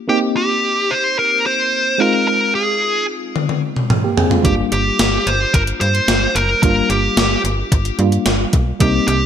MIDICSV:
0, 0, Header, 1, 5, 480
1, 0, Start_track
1, 0, Tempo, 545455
1, 72, Time_signature, 4, 2, 24, 8
1, 8148, End_track
2, 0, Start_track
2, 0, Title_t, "Lead electric guitar"
2, 0, Program_c, 0, 29
2, 81, Note_on_c, 0, 67, 88
2, 145, Note_off_c, 0, 67, 0
2, 322, Note_on_c, 0, 67, 76
2, 799, Note_on_c, 0, 72, 84
2, 811, Note_off_c, 0, 67, 0
2, 1041, Note_off_c, 0, 72, 0
2, 1045, Note_on_c, 0, 70, 92
2, 1285, Note_off_c, 0, 70, 0
2, 1288, Note_on_c, 0, 72, 89
2, 1762, Note_on_c, 0, 70, 81
2, 1774, Note_off_c, 0, 72, 0
2, 1994, Note_off_c, 0, 70, 0
2, 2005, Note_on_c, 0, 70, 82
2, 2241, Note_off_c, 0, 70, 0
2, 2245, Note_on_c, 0, 68, 68
2, 2685, Note_off_c, 0, 68, 0
2, 3916, Note_on_c, 0, 67, 83
2, 3980, Note_off_c, 0, 67, 0
2, 4156, Note_on_c, 0, 67, 77
2, 4638, Note_on_c, 0, 72, 81
2, 4648, Note_off_c, 0, 67, 0
2, 4873, Note_on_c, 0, 70, 89
2, 4882, Note_off_c, 0, 72, 0
2, 4937, Note_off_c, 0, 70, 0
2, 5111, Note_on_c, 0, 72, 98
2, 5597, Note_on_c, 0, 70, 78
2, 5606, Note_off_c, 0, 72, 0
2, 5824, Note_off_c, 0, 70, 0
2, 5835, Note_on_c, 0, 70, 81
2, 6074, Note_off_c, 0, 70, 0
2, 6077, Note_on_c, 0, 67, 69
2, 6521, Note_off_c, 0, 67, 0
2, 7753, Note_on_c, 0, 67, 80
2, 7979, Note_off_c, 0, 67, 0
2, 7989, Note_on_c, 0, 67, 79
2, 8148, Note_off_c, 0, 67, 0
2, 8148, End_track
3, 0, Start_track
3, 0, Title_t, "FM electric piano"
3, 0, Program_c, 1, 5
3, 0, Control_c, 1, 64, 127
3, 67, Note_on_c, 1, 58, 59
3, 75, Note_on_c, 1, 60, 53
3, 81, Note_on_c, 1, 63, 52
3, 83, Control_c, 1, 64, 0
3, 87, Note_on_c, 1, 67, 65
3, 247, Control_c, 1, 64, 127
3, 1716, Note_off_c, 1, 58, 0
3, 1720, Note_off_c, 1, 60, 0
3, 1723, Note_off_c, 1, 63, 0
3, 1726, Note_off_c, 1, 67, 0
3, 1745, Note_on_c, 1, 56, 60
3, 1752, Note_on_c, 1, 60, 55
3, 1759, Note_on_c, 1, 63, 53
3, 1763, Control_c, 1, 64, 0
3, 1766, Note_on_c, 1, 65, 65
3, 1940, Control_c, 1, 64, 127
3, 3395, Note_off_c, 1, 56, 0
3, 3398, Note_off_c, 1, 60, 0
3, 3402, Note_off_c, 1, 63, 0
3, 3406, Note_off_c, 1, 65, 0
3, 3557, Note_on_c, 1, 67, 53
3, 3561, Note_on_c, 1, 58, 44
3, 3668, Note_off_c, 1, 67, 0
3, 3671, Note_off_c, 1, 58, 0
3, 3672, Note_on_c, 1, 68, 64
3, 3676, Note_on_c, 1, 60, 50
3, 3786, Note_off_c, 1, 68, 0
3, 3788, Note_off_c, 1, 60, 0
3, 3790, Note_on_c, 1, 65, 50
3, 3796, Note_on_c, 1, 56, 42
3, 3899, Note_on_c, 1, 55, 57
3, 3906, Note_on_c, 1, 58, 53
3, 3910, Note_off_c, 1, 65, 0
3, 3914, Note_on_c, 1, 62, 54
3, 3921, Note_on_c, 1, 65, 60
3, 3925, Control_c, 1, 64, 0
3, 4022, Note_off_c, 1, 56, 0
3, 4080, Control_c, 1, 64, 127
3, 5790, Note_off_c, 1, 55, 0
3, 5794, Note_off_c, 1, 58, 0
3, 5798, Note_off_c, 1, 62, 0
3, 5801, Note_off_c, 1, 65, 0
3, 5826, Note_on_c, 1, 55, 61
3, 5832, Note_on_c, 1, 58, 51
3, 5839, Note_on_c, 1, 62, 50
3, 5848, Note_on_c, 1, 65, 65
3, 7005, Note_off_c, 1, 55, 0
3, 7008, Note_off_c, 1, 58, 0
3, 7011, Note_off_c, 1, 62, 0
3, 7016, Note_off_c, 1, 65, 0
3, 7027, Note_on_c, 1, 55, 51
3, 7031, Note_on_c, 1, 58, 45
3, 7034, Note_on_c, 1, 62, 50
3, 7038, Note_on_c, 1, 65, 60
3, 7730, Note_off_c, 1, 55, 0
3, 7736, Note_off_c, 1, 58, 0
3, 7741, Note_on_c, 1, 55, 60
3, 7747, Note_on_c, 1, 58, 53
3, 7753, Note_off_c, 1, 62, 0
3, 7755, Note_off_c, 1, 65, 0
3, 7756, Note_on_c, 1, 60, 54
3, 7762, Note_on_c, 1, 63, 61
3, 7764, Control_c, 1, 64, 0
3, 7940, Control_c, 1, 64, 127
3, 8148, Note_off_c, 1, 55, 0
3, 8148, Note_off_c, 1, 58, 0
3, 8148, Note_off_c, 1, 60, 0
3, 8148, Note_off_c, 1, 63, 0
3, 8148, End_track
4, 0, Start_track
4, 0, Title_t, "FM bass"
4, 0, Program_c, 2, 39
4, 3913, Note_on_c, 2, 31, 92
4, 4085, Note_off_c, 2, 31, 0
4, 4156, Note_on_c, 2, 31, 86
4, 4327, Note_off_c, 2, 31, 0
4, 4397, Note_on_c, 2, 31, 94
4, 4568, Note_off_c, 2, 31, 0
4, 4635, Note_on_c, 2, 31, 91
4, 4807, Note_off_c, 2, 31, 0
4, 4875, Note_on_c, 2, 31, 88
4, 5047, Note_off_c, 2, 31, 0
4, 5114, Note_on_c, 2, 43, 88
4, 5286, Note_off_c, 2, 43, 0
4, 5351, Note_on_c, 2, 31, 86
4, 5524, Note_off_c, 2, 31, 0
4, 5591, Note_on_c, 2, 30, 89
4, 5764, Note_off_c, 2, 30, 0
4, 5833, Note_on_c, 2, 31, 99
4, 6006, Note_off_c, 2, 31, 0
4, 6070, Note_on_c, 2, 31, 94
4, 6243, Note_off_c, 2, 31, 0
4, 6309, Note_on_c, 2, 31, 96
4, 6483, Note_off_c, 2, 31, 0
4, 6549, Note_on_c, 2, 31, 84
4, 6723, Note_off_c, 2, 31, 0
4, 6793, Note_on_c, 2, 31, 92
4, 6965, Note_off_c, 2, 31, 0
4, 7030, Note_on_c, 2, 43, 90
4, 7203, Note_off_c, 2, 43, 0
4, 7270, Note_on_c, 2, 31, 95
4, 7443, Note_off_c, 2, 31, 0
4, 7510, Note_on_c, 2, 35, 80
4, 7683, Note_off_c, 2, 35, 0
4, 7750, Note_on_c, 2, 36, 102
4, 7923, Note_off_c, 2, 36, 0
4, 7988, Note_on_c, 2, 36, 96
4, 8148, Note_off_c, 2, 36, 0
4, 8148, End_track
5, 0, Start_track
5, 0, Title_t, "Drums"
5, 2953, Note_on_c, 9, 48, 49
5, 3041, Note_off_c, 9, 48, 0
5, 3073, Note_on_c, 9, 48, 47
5, 3161, Note_off_c, 9, 48, 0
5, 3313, Note_on_c, 9, 47, 56
5, 3401, Note_off_c, 9, 47, 0
5, 3433, Note_on_c, 9, 45, 76
5, 3521, Note_off_c, 9, 45, 0
5, 3674, Note_on_c, 9, 43, 86
5, 3762, Note_off_c, 9, 43, 0
5, 3793, Note_on_c, 9, 43, 77
5, 3881, Note_off_c, 9, 43, 0
5, 3913, Note_on_c, 9, 36, 104
5, 3914, Note_on_c, 9, 42, 81
5, 4001, Note_off_c, 9, 36, 0
5, 4002, Note_off_c, 9, 42, 0
5, 4153, Note_on_c, 9, 42, 64
5, 4241, Note_off_c, 9, 42, 0
5, 4394, Note_on_c, 9, 42, 83
5, 4395, Note_on_c, 9, 38, 102
5, 4482, Note_off_c, 9, 42, 0
5, 4483, Note_off_c, 9, 38, 0
5, 4637, Note_on_c, 9, 42, 63
5, 4725, Note_off_c, 9, 42, 0
5, 4875, Note_on_c, 9, 36, 84
5, 4876, Note_on_c, 9, 42, 77
5, 4963, Note_off_c, 9, 36, 0
5, 4964, Note_off_c, 9, 42, 0
5, 4993, Note_on_c, 9, 42, 52
5, 5081, Note_off_c, 9, 42, 0
5, 5113, Note_on_c, 9, 42, 57
5, 5201, Note_off_c, 9, 42, 0
5, 5233, Note_on_c, 9, 42, 42
5, 5321, Note_off_c, 9, 42, 0
5, 5353, Note_on_c, 9, 38, 94
5, 5354, Note_on_c, 9, 42, 91
5, 5441, Note_off_c, 9, 38, 0
5, 5442, Note_off_c, 9, 42, 0
5, 5594, Note_on_c, 9, 42, 68
5, 5682, Note_off_c, 9, 42, 0
5, 5833, Note_on_c, 9, 36, 99
5, 5834, Note_on_c, 9, 42, 82
5, 5921, Note_off_c, 9, 36, 0
5, 5922, Note_off_c, 9, 42, 0
5, 6071, Note_on_c, 9, 42, 63
5, 6159, Note_off_c, 9, 42, 0
5, 6311, Note_on_c, 9, 42, 86
5, 6312, Note_on_c, 9, 38, 108
5, 6399, Note_off_c, 9, 42, 0
5, 6400, Note_off_c, 9, 38, 0
5, 6554, Note_on_c, 9, 42, 64
5, 6642, Note_off_c, 9, 42, 0
5, 6792, Note_on_c, 9, 36, 83
5, 6793, Note_on_c, 9, 42, 75
5, 6880, Note_off_c, 9, 36, 0
5, 6881, Note_off_c, 9, 42, 0
5, 6909, Note_on_c, 9, 42, 51
5, 6997, Note_off_c, 9, 42, 0
5, 7028, Note_on_c, 9, 42, 55
5, 7116, Note_off_c, 9, 42, 0
5, 7147, Note_on_c, 9, 42, 44
5, 7235, Note_off_c, 9, 42, 0
5, 7266, Note_on_c, 9, 38, 96
5, 7268, Note_on_c, 9, 42, 90
5, 7354, Note_off_c, 9, 38, 0
5, 7356, Note_off_c, 9, 42, 0
5, 7506, Note_on_c, 9, 42, 66
5, 7509, Note_on_c, 9, 36, 81
5, 7594, Note_off_c, 9, 42, 0
5, 7597, Note_off_c, 9, 36, 0
5, 7747, Note_on_c, 9, 42, 78
5, 7750, Note_on_c, 9, 36, 99
5, 7835, Note_off_c, 9, 42, 0
5, 7838, Note_off_c, 9, 36, 0
5, 7988, Note_on_c, 9, 42, 67
5, 8076, Note_off_c, 9, 42, 0
5, 8148, End_track
0, 0, End_of_file